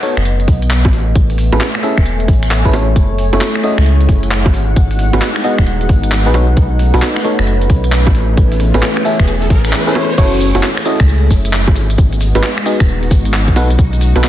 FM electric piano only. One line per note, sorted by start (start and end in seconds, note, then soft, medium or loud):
0.03 0.16 B3 medium
0.03 0.16 D#4 medium
0.03 0.16 F#4 medium
0.03 0.16 A4 medium
0.03 0.16 C#5 medium
1.53 1.67 C#4 medium
1.53 1.67 E4 medium
1.53 1.67 G#4 medium
1.53 1.67 A4 medium
1.53 1.67 B4 medium
1.83 1.96 C#4 medium
1.83 1.96 E4 medium
1.83 1.96 G#4 medium
1.83 1.96 A4 medium
1.83 1.96 E5 medium
2.65 2.72 C#4 medium
2.65 2.72 E4 medium
2.65 2.72 G#4 medium
2.65 2.72 A4 medium
2.65 2.72 B4 loud
2.73 2.86 C#4 medium
2.73 2.86 E4 medium
2.73 2.86 G#4 medium
2.73 2.86 A4 medium
2.73 2.86 C#5 medium
3.33 3.47 C#4 medium
3.33 3.47 E4 medium
3.33 3.47 F#4 medium
3.33 3.47 A4 medium
3.33 3.47 C#5 medium
3.64 3.76 C#4 medium
3.64 3.76 E4 medium
3.64 3.76 F#4 medium
3.64 3.76 A4 medium
3.64 3.76 D#5 medium
5.13 5.28 B3 medium
5.13 5.28 D#4 medium
5.13 5.28 F#4 medium
5.13 5.28 G#4 medium
5.13 5.28 B4 medium
5.44 5.57 B3 medium
5.44 5.57 D#4 medium
5.44 5.57 F#4 medium
5.44 5.57 G#4 medium
5.44 5.57 D#5 medium
6.26 6.33 B3 loud
6.26 6.33 D#4 medium
6.26 6.33 F#4 medium
6.26 6.33 G#4 medium
6.26 6.33 B4 loud
6.34 6.47 B3 medium
6.34 6.47 D#4 medium
6.34 6.47 F#4 medium
6.34 6.47 A4 medium
6.34 6.47 C#5 medium
6.94 7.08 B3 medium
6.94 7.08 D#4 medium
6.94 7.08 F#4 medium
6.94 7.08 A4 medium
6.94 7.08 B4 medium
7.25 7.37 B3 medium
7.25 7.37 D#4 medium
7.25 7.37 F#4 medium
7.25 7.37 A4 medium
7.25 7.37 C#5 medium
8.74 8.89 C#4 medium
8.74 8.89 E4 medium
8.74 8.89 G#4 medium
8.74 8.89 A4 medium
8.74 8.89 B4 medium
9.05 9.18 C#4 medium
9.05 9.18 E4 medium
9.05 9.18 G#4 medium
9.05 9.18 A4 medium
9.05 9.18 E5 medium
9.87 9.94 C#4 medium
9.87 9.94 E4 medium
9.87 9.94 G#4 medium
9.87 9.94 A4 medium
9.87 9.94 B4 loud
9.95 10.08 C#4 medium
9.95 10.08 E4 medium
9.95 10.08 G#4 medium
9.95 10.08 A4 medium
9.95 10.08 C#5 medium
10.18 10.49 C#4 loud
10.18 10.49 E4 loud
10.18 10.49 F#4 loud
10.18 10.49 A4 loud
10.18 10.49 C#5 loud
10.55 10.69 C#4 medium
10.55 10.69 E4 medium
10.55 10.69 F#4 medium
10.55 10.69 A4 medium
10.55 10.69 C#5 medium
10.86 10.98 C#4 medium
10.86 10.98 E4 medium
10.86 10.98 F#4 medium
10.86 10.98 A4 medium
10.86 10.98 D#5 medium
12.35 12.49 B3 medium
12.35 12.49 D#4 medium
12.35 12.49 F#4 medium
12.35 12.49 G#4 medium
12.35 12.49 B4 medium
12.66 12.79 B3 medium
12.66 12.79 D#4 medium
12.66 12.79 F#4 medium
12.66 12.79 G#4 medium
12.66 12.79 D#5 medium
13.56 13.69 B3 medium
13.56 13.69 D#4 medium
13.56 13.69 F#4 medium
13.56 13.69 A4 medium
13.56 13.69 B4 loud
14.16 14.29 B3 medium
14.16 14.29 D#4 medium
14.16 14.29 F#4 medium
14.16 14.29 A4 medium
14.16 14.29 B4 medium